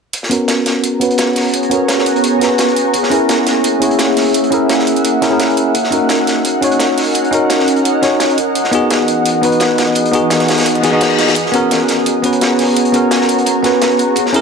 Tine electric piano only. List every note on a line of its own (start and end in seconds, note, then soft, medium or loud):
0.29 0.98 B3 medium
0.29 0.99 C#4 medium
0.29 1.00 F#4 medium
0.29 1.00 A#4 medium
1.00 1.69 B3 medium
1.00 1.69 C#4 medium
1.00 1.70 F#4 medium
1.00 1.70 B4 medium
1.70 2.39 B3 medium
1.70 2.39 C#4 medium
1.70 2.40 F#4 medium
1.70 2.40 A#4 medium
2.40 2.92 B3 medium
2.40 2.93 C#4 medium
2.40 2.93 F#4 medium
2.40 2.94 B4 medium
3.10 3.79 C#4 medium
3.10 3.80 E4 medium
3.10 3.80 G#4 medium
3.10 3.81 A#4 medium
3.80 4.49 C#4 medium
3.80 4.50 E4 medium
3.80 4.50 G#4 medium
3.80 4.51 C#5 medium
4.50 5.19 C#4 medium
4.50 5.20 E4 medium
4.50 5.21 G#4 medium
4.50 5.21 A#4 medium
5.21 5.28 C#4 medium
5.21 5.29 E4 medium
5.21 5.29 G#4 medium
5.21 5.30 A#4 medium
5.30 5.73 C#4 medium
5.30 5.73 E4 medium
5.30 5.74 G#4 medium
5.30 5.75 A#4 medium
5.91 6.60 C#4 medium
5.91 6.60 D#4 medium
5.91 6.61 F#4 medium
5.91 6.61 A#4 medium
6.61 7.30 C#4 medium
6.61 7.30 D#4 medium
6.61 7.31 F#4 medium
6.61 7.32 C#5 medium
7.31 8.00 C#4 medium
7.31 8.01 D#4 medium
7.31 8.01 F#4 medium
7.31 8.02 A#4 medium
8.02 8.37 C#4 medium
8.02 8.37 D#4 medium
8.02 8.37 F#4 medium
8.02 8.37 C#5 medium
8.71 9.40 B3 medium
8.71 9.41 D#4 medium
8.71 9.42 F#4 medium
8.71 9.42 G#4 medium
9.42 10.11 B3 medium
9.42 10.11 D#4 medium
9.42 10.12 F#4 medium
9.42 10.12 B4 medium
10.12 10.81 B3 medium
10.12 10.81 D#4 medium
10.12 10.82 F#4 medium
10.12 10.82 G#4 medium
10.83 10.90 B3 medium
10.83 10.91 D#4 medium
10.83 10.91 F#4 medium
10.83 10.91 G#4 medium
10.91 11.34 B3 medium
10.91 11.35 D#4 medium
10.91 11.36 F#4 medium
10.91 11.36 G#4 medium
11.52 12.21 B3 medium
11.52 12.22 C#4 medium
11.52 12.22 F#4 medium
11.52 12.23 A#4 medium
12.22 12.91 B3 medium
12.22 12.92 C#4 medium
12.22 12.92 F#4 medium
12.22 12.93 B4 medium
12.92 13.61 B3 medium
12.92 13.62 C#4 medium
12.92 13.63 F#4 medium
12.92 13.63 A#4 medium
13.63 14.15 B3 medium
13.63 14.16 C#4 medium
13.63 14.16 F#4 medium
13.63 14.17 B4 medium
14.33 14.41 C#4 medium
14.33 14.41 E4 medium
14.33 14.41 G#4 medium
14.33 14.41 A#4 medium